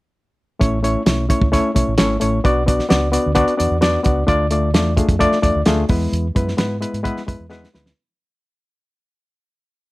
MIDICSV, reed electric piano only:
0, 0, Header, 1, 2, 480
1, 0, Start_track
1, 0, Key_signature, 3, "major"
1, 0, Tempo, 459770
1, 635, Time_signature, 4, 2, 24, 8
1, 10353, End_track
2, 0, Start_track
2, 0, Title_t, "Reed electric piano"
2, 0, Program_c, 0, 4
2, 621, Note_on_c, 0, 57, 83
2, 627, Note_on_c, 0, 61, 83
2, 633, Note_on_c, 0, 64, 76
2, 634, Note_on_c, 0, 73, 95
2, 814, Note_off_c, 0, 57, 0
2, 818, Note_off_c, 0, 61, 0
2, 820, Note_off_c, 0, 64, 0
2, 821, Note_off_c, 0, 73, 0
2, 863, Note_on_c, 0, 57, 69
2, 869, Note_on_c, 0, 61, 74
2, 875, Note_on_c, 0, 64, 68
2, 879, Note_on_c, 0, 73, 91
2, 1055, Note_off_c, 0, 57, 0
2, 1058, Note_off_c, 0, 61, 0
2, 1061, Note_off_c, 0, 64, 0
2, 1063, Note_off_c, 0, 73, 0
2, 1105, Note_on_c, 0, 57, 65
2, 1111, Note_on_c, 0, 61, 65
2, 1115, Note_on_c, 0, 64, 70
2, 1118, Note_on_c, 0, 73, 81
2, 1296, Note_off_c, 0, 57, 0
2, 1299, Note_off_c, 0, 61, 0
2, 1301, Note_off_c, 0, 64, 0
2, 1303, Note_off_c, 0, 73, 0
2, 1344, Note_on_c, 0, 57, 67
2, 1345, Note_on_c, 0, 61, 65
2, 1352, Note_on_c, 0, 64, 72
2, 1358, Note_on_c, 0, 73, 84
2, 1535, Note_off_c, 0, 57, 0
2, 1536, Note_off_c, 0, 61, 0
2, 1540, Note_off_c, 0, 64, 0
2, 1543, Note_off_c, 0, 73, 0
2, 1587, Note_on_c, 0, 57, 92
2, 1591, Note_on_c, 0, 61, 91
2, 1596, Note_on_c, 0, 64, 87
2, 1599, Note_on_c, 0, 73, 106
2, 1777, Note_off_c, 0, 57, 0
2, 1779, Note_off_c, 0, 61, 0
2, 1782, Note_off_c, 0, 64, 0
2, 1783, Note_off_c, 0, 73, 0
2, 1823, Note_on_c, 0, 57, 74
2, 1826, Note_on_c, 0, 61, 65
2, 1834, Note_on_c, 0, 64, 65
2, 1836, Note_on_c, 0, 73, 81
2, 2015, Note_off_c, 0, 57, 0
2, 2016, Note_off_c, 0, 61, 0
2, 2020, Note_off_c, 0, 64, 0
2, 2021, Note_off_c, 0, 73, 0
2, 2061, Note_on_c, 0, 57, 89
2, 2065, Note_on_c, 0, 61, 90
2, 2073, Note_on_c, 0, 64, 82
2, 2079, Note_on_c, 0, 73, 95
2, 2254, Note_off_c, 0, 57, 0
2, 2256, Note_off_c, 0, 61, 0
2, 2260, Note_off_c, 0, 64, 0
2, 2263, Note_off_c, 0, 73, 0
2, 2298, Note_on_c, 0, 57, 74
2, 2305, Note_on_c, 0, 61, 68
2, 2314, Note_on_c, 0, 64, 62
2, 2314, Note_on_c, 0, 73, 87
2, 2492, Note_off_c, 0, 57, 0
2, 2496, Note_off_c, 0, 61, 0
2, 2500, Note_off_c, 0, 64, 0
2, 2500, Note_off_c, 0, 73, 0
2, 2547, Note_on_c, 0, 59, 88
2, 2550, Note_on_c, 0, 62, 82
2, 2558, Note_on_c, 0, 66, 92
2, 2563, Note_on_c, 0, 74, 99
2, 2737, Note_off_c, 0, 59, 0
2, 2739, Note_off_c, 0, 62, 0
2, 2743, Note_off_c, 0, 66, 0
2, 2745, Note_off_c, 0, 74, 0
2, 2779, Note_on_c, 0, 59, 73
2, 2788, Note_on_c, 0, 62, 69
2, 2791, Note_on_c, 0, 66, 73
2, 2797, Note_on_c, 0, 74, 83
2, 2973, Note_off_c, 0, 59, 0
2, 2977, Note_off_c, 0, 62, 0
2, 2979, Note_off_c, 0, 66, 0
2, 2982, Note_off_c, 0, 74, 0
2, 3016, Note_on_c, 0, 59, 78
2, 3020, Note_on_c, 0, 62, 70
2, 3024, Note_on_c, 0, 66, 71
2, 3029, Note_on_c, 0, 74, 87
2, 3211, Note_off_c, 0, 59, 0
2, 3214, Note_off_c, 0, 62, 0
2, 3215, Note_off_c, 0, 66, 0
2, 3218, Note_off_c, 0, 74, 0
2, 3256, Note_on_c, 0, 59, 81
2, 3260, Note_on_c, 0, 62, 64
2, 3266, Note_on_c, 0, 66, 69
2, 3270, Note_on_c, 0, 74, 79
2, 3452, Note_off_c, 0, 59, 0
2, 3454, Note_off_c, 0, 62, 0
2, 3457, Note_off_c, 0, 66, 0
2, 3459, Note_off_c, 0, 74, 0
2, 3493, Note_on_c, 0, 59, 99
2, 3501, Note_on_c, 0, 62, 93
2, 3504, Note_on_c, 0, 66, 100
2, 3508, Note_on_c, 0, 74, 105
2, 3690, Note_off_c, 0, 59, 0
2, 3694, Note_off_c, 0, 62, 0
2, 3696, Note_off_c, 0, 66, 0
2, 3698, Note_off_c, 0, 74, 0
2, 3729, Note_on_c, 0, 59, 69
2, 3734, Note_on_c, 0, 62, 67
2, 3740, Note_on_c, 0, 66, 65
2, 3745, Note_on_c, 0, 74, 83
2, 3929, Note_off_c, 0, 59, 0
2, 3931, Note_off_c, 0, 62, 0
2, 3934, Note_off_c, 0, 66, 0
2, 3936, Note_off_c, 0, 74, 0
2, 3977, Note_on_c, 0, 59, 89
2, 3980, Note_on_c, 0, 62, 83
2, 3983, Note_on_c, 0, 66, 83
2, 3994, Note_on_c, 0, 74, 103
2, 4173, Note_off_c, 0, 59, 0
2, 4174, Note_off_c, 0, 62, 0
2, 4176, Note_off_c, 0, 66, 0
2, 4181, Note_off_c, 0, 74, 0
2, 4211, Note_on_c, 0, 59, 72
2, 4215, Note_on_c, 0, 62, 76
2, 4221, Note_on_c, 0, 66, 68
2, 4229, Note_on_c, 0, 74, 77
2, 4410, Note_off_c, 0, 59, 0
2, 4412, Note_off_c, 0, 62, 0
2, 4415, Note_off_c, 0, 66, 0
2, 4419, Note_off_c, 0, 74, 0
2, 4455, Note_on_c, 0, 57, 84
2, 4456, Note_on_c, 0, 62, 87
2, 4469, Note_on_c, 0, 65, 93
2, 4473, Note_on_c, 0, 74, 113
2, 4652, Note_off_c, 0, 57, 0
2, 4652, Note_off_c, 0, 62, 0
2, 4659, Note_off_c, 0, 65, 0
2, 4661, Note_off_c, 0, 74, 0
2, 4707, Note_on_c, 0, 57, 84
2, 4712, Note_on_c, 0, 62, 72
2, 4716, Note_on_c, 0, 65, 68
2, 4720, Note_on_c, 0, 74, 84
2, 4898, Note_off_c, 0, 57, 0
2, 4901, Note_off_c, 0, 62, 0
2, 4903, Note_off_c, 0, 65, 0
2, 4905, Note_off_c, 0, 74, 0
2, 4948, Note_on_c, 0, 57, 76
2, 4953, Note_on_c, 0, 62, 72
2, 4954, Note_on_c, 0, 65, 76
2, 4963, Note_on_c, 0, 74, 84
2, 5139, Note_off_c, 0, 57, 0
2, 5141, Note_off_c, 0, 62, 0
2, 5142, Note_off_c, 0, 65, 0
2, 5146, Note_off_c, 0, 74, 0
2, 5183, Note_on_c, 0, 57, 77
2, 5188, Note_on_c, 0, 62, 68
2, 5190, Note_on_c, 0, 65, 67
2, 5197, Note_on_c, 0, 68, 77
2, 5376, Note_off_c, 0, 57, 0
2, 5379, Note_off_c, 0, 62, 0
2, 5380, Note_off_c, 0, 65, 0
2, 5383, Note_off_c, 0, 68, 0
2, 5420, Note_on_c, 0, 57, 100
2, 5428, Note_on_c, 0, 62, 87
2, 5430, Note_on_c, 0, 65, 89
2, 5432, Note_on_c, 0, 74, 116
2, 5615, Note_off_c, 0, 57, 0
2, 5619, Note_off_c, 0, 62, 0
2, 5620, Note_off_c, 0, 65, 0
2, 5621, Note_off_c, 0, 74, 0
2, 5660, Note_on_c, 0, 57, 77
2, 5663, Note_on_c, 0, 62, 70
2, 5667, Note_on_c, 0, 65, 64
2, 5671, Note_on_c, 0, 74, 87
2, 5855, Note_off_c, 0, 57, 0
2, 5856, Note_off_c, 0, 62, 0
2, 5859, Note_off_c, 0, 65, 0
2, 5860, Note_off_c, 0, 74, 0
2, 5907, Note_on_c, 0, 57, 110
2, 5909, Note_on_c, 0, 62, 86
2, 5916, Note_on_c, 0, 65, 92
2, 5917, Note_on_c, 0, 68, 106
2, 6099, Note_off_c, 0, 57, 0
2, 6099, Note_off_c, 0, 62, 0
2, 6103, Note_off_c, 0, 65, 0
2, 6104, Note_off_c, 0, 68, 0
2, 6148, Note_on_c, 0, 56, 86
2, 6151, Note_on_c, 0, 59, 73
2, 6152, Note_on_c, 0, 64, 73
2, 6157, Note_on_c, 0, 71, 76
2, 6537, Note_off_c, 0, 56, 0
2, 6538, Note_off_c, 0, 59, 0
2, 6539, Note_off_c, 0, 64, 0
2, 6541, Note_off_c, 0, 71, 0
2, 6629, Note_on_c, 0, 56, 72
2, 6638, Note_on_c, 0, 59, 67
2, 6638, Note_on_c, 0, 64, 70
2, 6644, Note_on_c, 0, 71, 76
2, 6820, Note_off_c, 0, 56, 0
2, 6824, Note_off_c, 0, 59, 0
2, 6825, Note_off_c, 0, 64, 0
2, 6827, Note_off_c, 0, 71, 0
2, 6862, Note_on_c, 0, 56, 73
2, 6866, Note_on_c, 0, 59, 74
2, 6872, Note_on_c, 0, 64, 63
2, 6874, Note_on_c, 0, 71, 86
2, 7056, Note_off_c, 0, 56, 0
2, 7059, Note_off_c, 0, 59, 0
2, 7062, Note_off_c, 0, 64, 0
2, 7062, Note_off_c, 0, 71, 0
2, 7103, Note_on_c, 0, 56, 75
2, 7108, Note_on_c, 0, 59, 62
2, 7113, Note_on_c, 0, 64, 68
2, 7120, Note_on_c, 0, 71, 82
2, 7297, Note_off_c, 0, 56, 0
2, 7300, Note_off_c, 0, 59, 0
2, 7302, Note_off_c, 0, 64, 0
2, 7305, Note_off_c, 0, 71, 0
2, 7340, Note_on_c, 0, 56, 93
2, 7344, Note_on_c, 0, 59, 92
2, 7350, Note_on_c, 0, 64, 94
2, 7351, Note_on_c, 0, 71, 104
2, 7535, Note_off_c, 0, 56, 0
2, 7538, Note_off_c, 0, 59, 0
2, 7540, Note_off_c, 0, 64, 0
2, 7541, Note_off_c, 0, 71, 0
2, 7587, Note_on_c, 0, 56, 73
2, 7591, Note_on_c, 0, 59, 62
2, 7597, Note_on_c, 0, 64, 72
2, 7599, Note_on_c, 0, 71, 83
2, 7779, Note_off_c, 0, 56, 0
2, 7781, Note_off_c, 0, 59, 0
2, 7784, Note_off_c, 0, 64, 0
2, 7785, Note_off_c, 0, 71, 0
2, 7826, Note_on_c, 0, 56, 98
2, 7832, Note_on_c, 0, 59, 97
2, 7837, Note_on_c, 0, 64, 89
2, 7842, Note_on_c, 0, 71, 109
2, 8019, Note_off_c, 0, 56, 0
2, 8021, Note_off_c, 0, 59, 0
2, 8024, Note_off_c, 0, 64, 0
2, 8027, Note_off_c, 0, 71, 0
2, 8074, Note_on_c, 0, 56, 71
2, 8078, Note_on_c, 0, 59, 66
2, 8084, Note_on_c, 0, 64, 64
2, 8090, Note_on_c, 0, 71, 78
2, 8263, Note_off_c, 0, 56, 0
2, 8264, Note_off_c, 0, 59, 0
2, 8268, Note_off_c, 0, 64, 0
2, 8270, Note_off_c, 0, 71, 0
2, 10353, End_track
0, 0, End_of_file